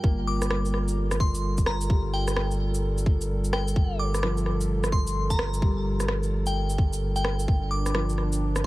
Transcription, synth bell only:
0.27 D6
1.20 C6
1.67 A#5
2.13 G5
3.53 G5
3.99 D6
4.92 C6
5.30 A#5
6.47 G5
7.16 G5
7.71 D6

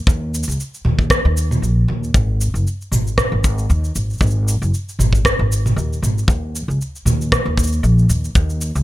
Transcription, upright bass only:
0.07 D#2
0.48 C#2
0.85 D#2
1.25 D#2
1.62 A#1
1.88 D#2
2.14 G#1
2.54 F#1
2.91 G#1
3.32 G#1
3.70 D#2
3.96 G#1
4.21 G#1
4.62 F#1
4.99 G#1
5.39 G#1
5.76 D#2
6.02 G#1
6.28 D#2
6.68 C#2
7.05 D#2
7.46 D#2
7.83 A#1
8.09 D#2
8.35 D#2
8.75 C#2

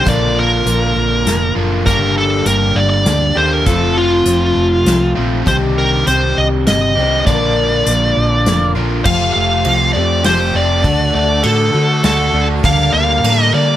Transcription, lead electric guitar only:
0.08 D5
0.39 A#4
1.86 A#4
2.18 A4
2.47 A#4
2.76 D5
2.90 D5
3.37 C5
3.53 A#4
3.66 A4
3.97 F4
5.48 C5
5.78 A#4
6.08 C5
6.38 D#5
6.68 D#5
7.26 D5
9.05 F5
9.33 F5
9.93 D5
10.25 C5
10.56 D5
11.15 D5
11.44 A4
12.05 A4
12.65 F5
12.94 F5
13.42 D#5
13.54 D5

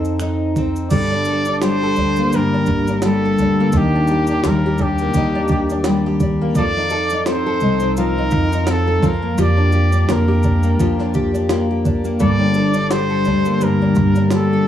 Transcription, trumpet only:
Already playing: A4
0.91 D5
1.64 C5
2.35 A#4
3.04 A4
3.77 G4
4.47 A#4
4.82 G4
6.57 D5
7.29 C5
8.00 A#4
8.71 A4
9.07 A#4
9.42 D5
10.12 A#4
12.21 D5
12.91 C5
13.64 A#4
14.35 A4

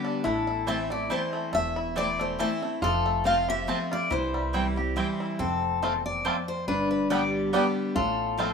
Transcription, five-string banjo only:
Already playing: G4
0.05 D4
0.24 A3
0.47 E4
0.67 C4
0.90 A3
1.10 E4
1.33 A3
1.53 A3
1.76 E4
1.96 C4
2.19 A3
2.39 E4
2.63 A3
2.82 F3
3.06 A3
3.25 F4
3.48 G4
3.68 C4
3.92 F4
4.11 E3
4.34 G3
4.54 E4
4.77 G4
4.97 C4
5.20 E4
5.83 A3 C4 F4
6.26 A3 C4 F4
7.11 G3 B3 D4
7.53 G3 B3 D4
8.39 A3 C4 F4

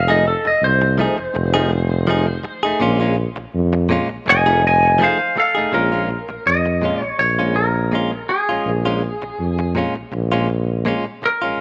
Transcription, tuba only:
Already playing: F1
0.45 F1
0.62 C2
1.19 F1
1.35 F1
2.64 F1
2.81 A#1
3.37 A#1
3.54 F2
4.11 A#1
4.27 F1
5.57 F1
5.73 A#1
6.29 A#1
6.46 F2
7.03 A#1
7.19 A#1
8.49 A#1
8.66 A#1
9.22 A#1
9.39 F2
9.96 A#1
10.12 A#1
11.43 A#1

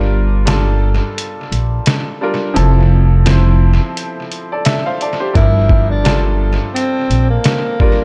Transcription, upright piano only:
Already playing: G3 D4 F4 A#4
0.45 G3 D4 F4 A4
2.21 G3 D4 F4 A#4
2.54 F3 C4 E4 A4
3.26 F3 C4 E4 C5
4.52 A4 D5
4.66 A4 E5
4.86 C5 F5
5.02 A4 D5
5.20 G4 C5
5.33 F3 G3 D4 A#4
6.04 G3 D4 F4 A4
7.79 G3 D4 F4 A#4

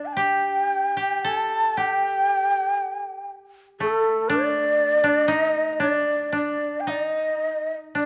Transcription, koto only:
Already playing: D4
0.17 G4
0.97 G4
1.24 A4
1.77 G4
3.80 A3
4.30 D4
5.04 D4
5.28 D#4
5.80 D4
6.32 D4
6.87 D#4
7.95 D4

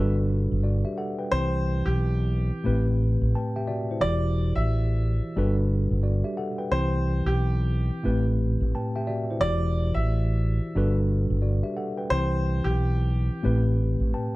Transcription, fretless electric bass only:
Already playing: G1
0.52 G1
1.32 C2
1.87 B1
2.67 A1
3.21 A1
4.02 E1
4.56 A1
5.37 G1
5.91 G1
6.71 C2
7.26 B1
8.06 A1
8.61 A1
9.41 E1
9.95 A1
10.76 G1
11.30 G1
12.11 C2
12.65 B1
13.46 A1
14.00 A1

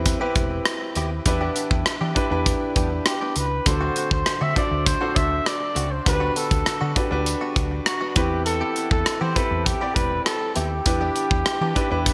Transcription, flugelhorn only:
3.07 G4
3.37 B4
3.67 C5
4.12 C5
4.42 E5
4.57 D5
4.86 C5
5.16 E5
5.47 D5
5.91 C5
6.08 B4
6.37 A4
7.86 F#4
8.17 G4
8.46 A4
8.91 A4
9.21 C5
9.36 B4
9.66 G4
9.95 B4
10.25 A4
10.55 G4

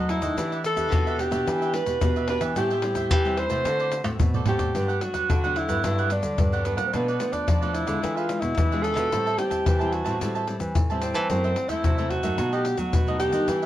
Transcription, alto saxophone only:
0.10 E4
0.66 A4
1.20 G4
1.75 B4
2.29 B4
2.57 G4
3.12 G4
3.38 C5
4.48 G4
5.02 F#4
5.57 E4
6.12 D4
6.66 B3
6.87 C4
6.93 B3
7.33 D4
7.74 E4
8.17 F4
8.40 E4
8.82 A4
9.38 G4
9.92 F#4
11.02 C4
11.31 C4
11.69 E4
12.11 F#4
12.54 G4
12.78 F#4
13.20 G4

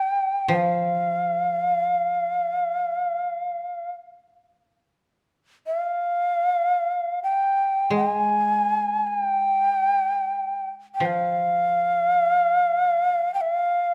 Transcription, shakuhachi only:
Already playing: G5
0.52 F5 G5
5.67 F5
7.23 G5
7.96 G5
8.09 G#5
9.07 G#5
9.20 G5
10.95 G5
11.06 F5
13.34 G5
13.41 E5
13.52 F5

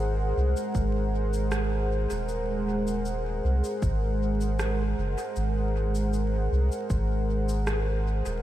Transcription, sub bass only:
Already playing: G#1
0.36 C2
0.75 G#1
2.11 D#1
3.44 C2
3.82 G#1
4.98 F#1
5.36 G#1
6.51 C2
6.90 G#1
8.26 D#1

